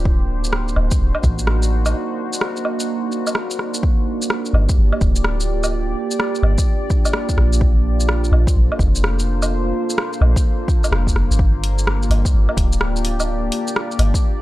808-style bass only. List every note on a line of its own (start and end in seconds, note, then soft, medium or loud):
0.00 0.75 D1 loud
0.76 0.90 D1 loud
0.99 1.14 D1 medium
1.23 1.94 A1 medium
4.53 4.68 G1 loud
4.78 4.92 G1 medium
5.01 5.95 D1 medium
6.43 6.57 G1 loud
7.37 8.31 A#1 medium
8.32 8.46 A#1 medium
8.56 8.70 A#1 medium
8.79 9.73 F1 medium
10.21 10.35 A#1 loud
10.91 11.14 F1 medium
11.15 11.29 F1 medium
11.31 12.09 G1 medium
12.10 12.24 G1 loud
12.34 12.48 G1 medium
12.57 13.51 D1 medium
13.99 14.13 G1 medium